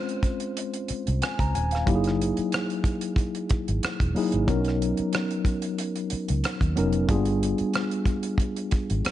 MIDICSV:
0, 0, Header, 1, 5, 480
1, 0, Start_track
1, 0, Tempo, 652174
1, 1378, Time_signature, 4, 2, 24, 8
1, 6707, End_track
2, 0, Start_track
2, 0, Title_t, "Tine electric piano"
2, 0, Program_c, 0, 4
2, 0, Control_c, 0, 64, 127
2, 0, Note_on_c, 0, 56, 84
2, 0, Note_on_c, 0, 60, 74
2, 0, Note_on_c, 0, 61, 78
2, 0, Note_on_c, 0, 65, 74
2, 0, Note_on_c, 0, 72, 93
2, 244, Note_off_c, 0, 56, 0
2, 248, Note_off_c, 0, 60, 0
2, 249, Note_off_c, 0, 61, 0
2, 252, Note_off_c, 0, 65, 0
2, 254, Note_off_c, 0, 72, 0
2, 902, Note_on_c, 0, 80, 56
2, 1022, Note_off_c, 0, 80, 0
2, 1030, Note_on_c, 0, 82, 65
2, 1134, Note_off_c, 0, 82, 0
2, 1140, Note_on_c, 0, 80, 64
2, 1261, Note_off_c, 0, 80, 0
2, 1269, Note_on_c, 0, 77, 57
2, 1368, Note_on_c, 0, 54, 86
2, 1375, Note_on_c, 0, 58, 76
2, 1380, Note_on_c, 0, 63, 77
2, 1384, Note_on_c, 0, 64, 78
2, 1387, Control_c, 0, 64, 0
2, 1390, Note_on_c, 0, 67, 72
2, 1435, Note_off_c, 0, 67, 0
2, 1438, Note_on_c, 0, 68, 89
2, 1496, Note_off_c, 0, 77, 0
2, 1522, Control_c, 0, 64, 127
2, 2164, Note_off_c, 0, 54, 0
2, 2167, Note_off_c, 0, 58, 0
2, 2170, Note_off_c, 0, 63, 0
2, 2172, Note_off_c, 0, 64, 0
2, 2199, Note_off_c, 0, 68, 0
2, 3054, Note_on_c, 0, 54, 76
2, 3057, Note_on_c, 0, 58, 71
2, 3064, Note_on_c, 0, 63, 75
2, 3069, Note_on_c, 0, 64, 69
2, 3073, Note_on_c, 0, 68, 81
2, 3255, Note_off_c, 0, 54, 0
2, 3257, Note_off_c, 0, 58, 0
2, 3260, Note_off_c, 0, 63, 0
2, 3263, Note_off_c, 0, 64, 0
2, 3265, Note_off_c, 0, 68, 0
2, 3293, Note_on_c, 0, 54, 83
2, 3297, Note_on_c, 0, 59, 73
2, 3302, Note_on_c, 0, 61, 75
2, 3307, Note_on_c, 0, 63, 73
2, 3308, Control_c, 0, 64, 0
2, 3314, Note_on_c, 0, 70, 89
2, 3443, Control_c, 0, 64, 127
2, 4086, Note_off_c, 0, 54, 0
2, 4088, Note_off_c, 0, 59, 0
2, 4091, Note_off_c, 0, 61, 0
2, 4093, Note_off_c, 0, 63, 0
2, 4097, Note_off_c, 0, 70, 0
2, 4973, Note_on_c, 0, 54, 82
2, 4976, Note_on_c, 0, 59, 70
2, 4983, Note_on_c, 0, 61, 74
2, 4988, Note_on_c, 0, 63, 72
2, 4993, Note_on_c, 0, 70, 84
2, 5175, Note_off_c, 0, 54, 0
2, 5177, Note_off_c, 0, 59, 0
2, 5180, Note_off_c, 0, 61, 0
2, 5183, Note_off_c, 0, 63, 0
2, 5185, Note_off_c, 0, 70, 0
2, 5211, Note_on_c, 0, 55, 85
2, 5214, Note_on_c, 0, 58, 64
2, 5221, Note_on_c, 0, 62, 78
2, 5225, Note_on_c, 0, 65, 76
2, 5227, Control_c, 0, 64, 0
2, 5230, Note_on_c, 0, 68, 93
2, 5263, Note_on_c, 0, 59, 79
2, 5267, Note_off_c, 0, 58, 0
2, 5359, Control_c, 0, 64, 127
2, 6005, Note_off_c, 0, 55, 0
2, 6010, Note_off_c, 0, 62, 0
2, 6012, Note_off_c, 0, 65, 0
2, 6015, Note_off_c, 0, 68, 0
2, 6031, Note_off_c, 0, 59, 0
2, 6707, End_track
3, 0, Start_track
3, 0, Title_t, "Fingered electric bass"
3, 0, Program_c, 1, 33
3, 795, Note_on_c, 1, 36, 83
3, 888, Note_off_c, 1, 36, 0
3, 1030, Note_on_c, 1, 37, 75
3, 1125, Note_off_c, 1, 37, 0
3, 1143, Note_on_c, 1, 27, 82
3, 1350, Note_off_c, 1, 27, 0
3, 1382, Note_on_c, 1, 30, 92
3, 1700, Note_off_c, 1, 30, 0
3, 2714, Note_on_c, 1, 32, 83
3, 2808, Note_off_c, 1, 32, 0
3, 2950, Note_on_c, 1, 28, 75
3, 3045, Note_off_c, 1, 28, 0
3, 3192, Note_on_c, 1, 32, 82
3, 3287, Note_off_c, 1, 32, 0
3, 3302, Note_on_c, 1, 35, 98
3, 3620, Note_off_c, 1, 35, 0
3, 4638, Note_on_c, 1, 37, 80
3, 4730, Note_off_c, 1, 37, 0
3, 4869, Note_on_c, 1, 39, 79
3, 4965, Note_off_c, 1, 39, 0
3, 4991, Note_on_c, 1, 29, 90
3, 5194, Note_off_c, 1, 29, 0
3, 5221, Note_on_c, 1, 31, 100
3, 5540, Note_off_c, 1, 31, 0
3, 6555, Note_on_c, 1, 32, 85
3, 6649, Note_off_c, 1, 32, 0
3, 6707, End_track
4, 0, Start_track
4, 0, Title_t, "Muted fingered electric bass strokes"
4, 666, Note_on_c, 9, 29, 47
4, 739, Note_off_c, 9, 29, 0
4, 1756, Note_on_c, 9, 29, 47
4, 1830, Note_off_c, 9, 29, 0
4, 2586, Note_on_c, 9, 29, 43
4, 2660, Note_off_c, 9, 29, 0
4, 2826, Note_on_c, 9, 29, 44
4, 2900, Note_off_c, 9, 29, 0
4, 3677, Note_on_c, 9, 29, 43
4, 3750, Note_off_c, 9, 29, 0
4, 4509, Note_on_c, 9, 29, 45
4, 4583, Note_off_c, 9, 29, 0
4, 5599, Note_on_c, 9, 29, 47
4, 5673, Note_off_c, 9, 29, 0
4, 6425, Note_on_c, 9, 29, 46
4, 6498, Note_off_c, 9, 29, 0
4, 6707, End_track
5, 0, Start_track
5, 0, Title_t, "Drums"
5, 64, Note_on_c, 9, 42, 39
5, 138, Note_off_c, 9, 42, 0
5, 168, Note_on_c, 9, 36, 83
5, 174, Note_on_c, 9, 42, 65
5, 241, Note_off_c, 9, 36, 0
5, 248, Note_off_c, 9, 42, 0
5, 294, Note_on_c, 9, 42, 52
5, 368, Note_off_c, 9, 42, 0
5, 418, Note_on_c, 9, 42, 76
5, 492, Note_off_c, 9, 42, 0
5, 541, Note_on_c, 9, 42, 49
5, 615, Note_off_c, 9, 42, 0
5, 651, Note_on_c, 9, 42, 69
5, 724, Note_off_c, 9, 42, 0
5, 786, Note_on_c, 9, 42, 50
5, 860, Note_off_c, 9, 42, 0
5, 898, Note_on_c, 9, 42, 80
5, 909, Note_on_c, 9, 37, 110
5, 971, Note_off_c, 9, 42, 0
5, 982, Note_off_c, 9, 37, 0
5, 1024, Note_on_c, 9, 36, 88
5, 1031, Note_on_c, 9, 42, 53
5, 1097, Note_off_c, 9, 36, 0
5, 1105, Note_off_c, 9, 42, 0
5, 1141, Note_on_c, 9, 42, 69
5, 1215, Note_off_c, 9, 42, 0
5, 1259, Note_on_c, 9, 42, 43
5, 1288, Note_on_c, 9, 37, 35
5, 1333, Note_off_c, 9, 42, 0
5, 1361, Note_off_c, 9, 37, 0
5, 1376, Note_on_c, 9, 36, 98
5, 1381, Note_on_c, 9, 42, 80
5, 1450, Note_off_c, 9, 36, 0
5, 1455, Note_off_c, 9, 42, 0
5, 1501, Note_on_c, 9, 42, 47
5, 1527, Note_on_c, 9, 37, 33
5, 1574, Note_off_c, 9, 42, 0
5, 1601, Note_off_c, 9, 37, 0
5, 1630, Note_on_c, 9, 42, 66
5, 1704, Note_off_c, 9, 42, 0
5, 1744, Note_on_c, 9, 42, 41
5, 1817, Note_off_c, 9, 42, 0
5, 1857, Note_on_c, 9, 42, 64
5, 1871, Note_on_c, 9, 37, 105
5, 1930, Note_off_c, 9, 42, 0
5, 1945, Note_off_c, 9, 37, 0
5, 1987, Note_on_c, 9, 42, 37
5, 2060, Note_off_c, 9, 42, 0
5, 2090, Note_on_c, 9, 36, 81
5, 2098, Note_on_c, 9, 42, 62
5, 2163, Note_off_c, 9, 36, 0
5, 2171, Note_off_c, 9, 42, 0
5, 2217, Note_on_c, 9, 42, 52
5, 2290, Note_off_c, 9, 42, 0
5, 2327, Note_on_c, 9, 36, 90
5, 2340, Note_on_c, 9, 42, 71
5, 2400, Note_off_c, 9, 36, 0
5, 2414, Note_off_c, 9, 42, 0
5, 2464, Note_on_c, 9, 42, 46
5, 2538, Note_off_c, 9, 42, 0
5, 2572, Note_on_c, 9, 42, 65
5, 2580, Note_on_c, 9, 36, 94
5, 2646, Note_off_c, 9, 42, 0
5, 2654, Note_off_c, 9, 36, 0
5, 2708, Note_on_c, 9, 42, 48
5, 2782, Note_off_c, 9, 42, 0
5, 2819, Note_on_c, 9, 42, 87
5, 2830, Note_on_c, 9, 37, 110
5, 2893, Note_off_c, 9, 42, 0
5, 2904, Note_off_c, 9, 37, 0
5, 2944, Note_on_c, 9, 36, 87
5, 2951, Note_on_c, 9, 42, 51
5, 3018, Note_off_c, 9, 36, 0
5, 3025, Note_off_c, 9, 42, 0
5, 3062, Note_on_c, 9, 46, 49
5, 3135, Note_off_c, 9, 46, 0
5, 3180, Note_on_c, 9, 42, 43
5, 3253, Note_off_c, 9, 42, 0
5, 3296, Note_on_c, 9, 36, 105
5, 3301, Note_on_c, 9, 42, 78
5, 3370, Note_off_c, 9, 36, 0
5, 3374, Note_off_c, 9, 42, 0
5, 3419, Note_on_c, 9, 42, 45
5, 3445, Note_on_c, 9, 37, 33
5, 3492, Note_off_c, 9, 42, 0
5, 3519, Note_off_c, 9, 37, 0
5, 3547, Note_on_c, 9, 42, 66
5, 3621, Note_off_c, 9, 42, 0
5, 3660, Note_on_c, 9, 42, 41
5, 3734, Note_off_c, 9, 42, 0
5, 3773, Note_on_c, 9, 42, 62
5, 3788, Note_on_c, 9, 37, 104
5, 3847, Note_off_c, 9, 42, 0
5, 3862, Note_off_c, 9, 37, 0
5, 3905, Note_on_c, 9, 42, 39
5, 3979, Note_off_c, 9, 42, 0
5, 4009, Note_on_c, 9, 36, 76
5, 4015, Note_on_c, 9, 42, 65
5, 4083, Note_off_c, 9, 36, 0
5, 4089, Note_off_c, 9, 42, 0
5, 4136, Note_on_c, 9, 42, 54
5, 4209, Note_off_c, 9, 42, 0
5, 4257, Note_on_c, 9, 42, 75
5, 4331, Note_off_c, 9, 42, 0
5, 4383, Note_on_c, 9, 42, 43
5, 4457, Note_off_c, 9, 42, 0
5, 4490, Note_on_c, 9, 42, 69
5, 4564, Note_off_c, 9, 42, 0
5, 4626, Note_on_c, 9, 42, 51
5, 4699, Note_off_c, 9, 42, 0
5, 4738, Note_on_c, 9, 42, 81
5, 4750, Note_on_c, 9, 37, 106
5, 4812, Note_off_c, 9, 42, 0
5, 4823, Note_off_c, 9, 37, 0
5, 4864, Note_on_c, 9, 36, 89
5, 4871, Note_on_c, 9, 42, 55
5, 4938, Note_off_c, 9, 36, 0
5, 4945, Note_off_c, 9, 42, 0
5, 4982, Note_on_c, 9, 42, 73
5, 5055, Note_off_c, 9, 42, 0
5, 5097, Note_on_c, 9, 42, 46
5, 5171, Note_off_c, 9, 42, 0
5, 5216, Note_on_c, 9, 36, 109
5, 5219, Note_on_c, 9, 42, 76
5, 5289, Note_off_c, 9, 36, 0
5, 5293, Note_off_c, 9, 42, 0
5, 5339, Note_on_c, 9, 42, 45
5, 5412, Note_off_c, 9, 42, 0
5, 5467, Note_on_c, 9, 42, 69
5, 5541, Note_off_c, 9, 42, 0
5, 5580, Note_on_c, 9, 42, 38
5, 5654, Note_off_c, 9, 42, 0
5, 5693, Note_on_c, 9, 42, 62
5, 5708, Note_on_c, 9, 37, 101
5, 5767, Note_off_c, 9, 42, 0
5, 5781, Note_off_c, 9, 37, 0
5, 5824, Note_on_c, 9, 42, 42
5, 5897, Note_off_c, 9, 42, 0
5, 5928, Note_on_c, 9, 36, 78
5, 5935, Note_on_c, 9, 42, 65
5, 6002, Note_off_c, 9, 36, 0
5, 6008, Note_off_c, 9, 42, 0
5, 6057, Note_on_c, 9, 42, 53
5, 6130, Note_off_c, 9, 42, 0
5, 6166, Note_on_c, 9, 36, 89
5, 6179, Note_on_c, 9, 42, 77
5, 6240, Note_off_c, 9, 36, 0
5, 6253, Note_off_c, 9, 42, 0
5, 6303, Note_on_c, 9, 42, 46
5, 6377, Note_off_c, 9, 42, 0
5, 6413, Note_on_c, 9, 42, 71
5, 6420, Note_on_c, 9, 36, 86
5, 6486, Note_off_c, 9, 42, 0
5, 6494, Note_off_c, 9, 36, 0
5, 6549, Note_on_c, 9, 42, 49
5, 6622, Note_off_c, 9, 42, 0
5, 6659, Note_on_c, 9, 42, 86
5, 6670, Note_on_c, 9, 37, 113
5, 6707, Note_off_c, 9, 37, 0
5, 6707, Note_off_c, 9, 42, 0
5, 6707, End_track
0, 0, End_of_file